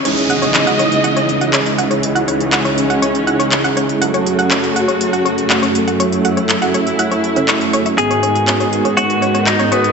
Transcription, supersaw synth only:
X:1
M:4/4
L:1/8
Q:1/4=121
K:C#m
V:1 name="Supersaw synth"
[C,G,CDEG]8- | [C,G,CDEG]8 | [F,A,CFA]8- | [F,A,CFA]8 |
[G,,G,B,DFG]8 |]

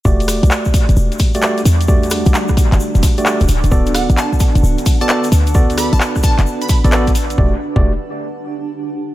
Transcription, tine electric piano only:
X:1
M:4/4
L:1/16
Q:"Swing 16ths" 1/4=131
K:Em
V:1 name="Tine electric piano"
[A,FGd]8- [A,FGd]3 [A,FGd] [A,FGd] z3 | [A,FGd]8- [A,FGd]3 [A,FGd] [A,FGd] z3 | [B,FAd]8- [B,FAd]3 [B,FAd] [B,FAd] z3 | [B,FAd]8- [B,FAd]3 [B,FAd] [B,FAd] z3 |
[A,FGd] z2 [A,FGd]2 z8 z3 |]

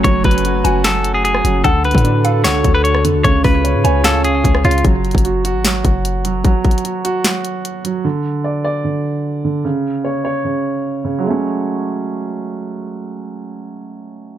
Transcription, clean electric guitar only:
X:1
M:4/4
L:1/16
Q:1/4=150
K:F#m
V:1 name="Clean electric guitar"
c2 B6 A3 G G4 | A2 B6 c3 B c2 z2 | c2 B6 A2 G4 ^E2 | z16 |
z16 | z16 | z16 | z16 |
z16 |]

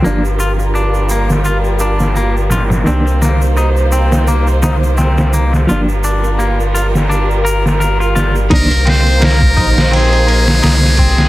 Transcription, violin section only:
X:1
M:4/4
L:1/8
Q:"Swing 16ths" 1/4=85
K:Cm
V:1 name="Violin section"
[G,FB]8 | [B,Ec]8 | [G,FB]8 | [B,Ec]8 |]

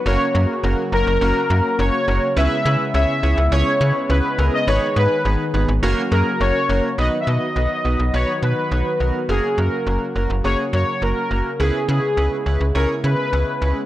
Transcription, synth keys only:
X:1
M:4/4
L:1/8
Q:1/4=104
K:B
V:1 name="Synth keys"
[A,CFA] [A,CFA] [A,CFA] [A,CFA] [A,CFA] [A,CFA] [A,CFc] [A,CFA] | [CEGB] [CEGB] [CEGc] [CEGc] [CEGc] [CEGB] [CEGB] [CEGA] | [B,DGB] [B,DGB] [B,DGB] [B,DGB] [A,CFA] [A,CFG] [A,CFA] [A,CFA] | [B,DFB] [B,DFB] [B,DFB] [B,DFB] [B,DFB] [B,DFB] [B,DFc] [B,DFA] |
[A,CFA] [A,CFA] [A,CFA] [A,CFA] [A,CFG] [A,CFA] [A,CFA] [A,CFA] | [CEGB] [CEGB] [CEGB] [CEGB] [CEGc] [CEGB] [CEGB] [CEGB] |]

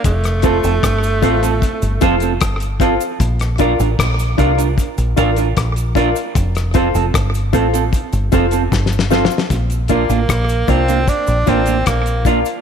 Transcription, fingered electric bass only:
X:1
M:4/4
L:1/16
Q:1/4=76
K:Bb
V:1 name="Fingered electric bass" clef=bass
F,,,3 F,,, G,,,2 A,,,2 z G,,, F,,,2 G,,,3 z | B,,,3 A,,, B,,,2 C,,2 z B,,, A,,,2 B,,,3 z | F,,,3 F,,, G,,,2 A,,,2 z G,,, F,,,2 G,,,3 z | B,,,3 A,,, B,,,2 C,,2 z B,,, A,,,2 B,,,3 z |]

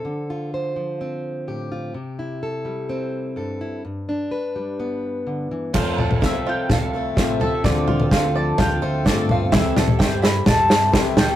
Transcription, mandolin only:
X:1
M:4/4
L:1/8
Q:1/4=127
K:C
V:1 name="Mandolin"
z8 | z8 | z8 | c2 e g f2 z e |
d2 f a g2 z f | e2 g b a2 z g |]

